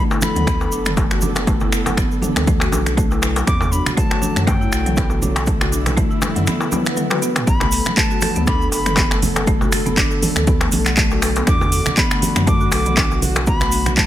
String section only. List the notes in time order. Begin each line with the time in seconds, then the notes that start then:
Already playing: D3 B3 A4
3.47 D3 F#3 A3
5.47 E4
7.47 D3 B3 A4
9.47 A3
11.47 F#4
13.47 B3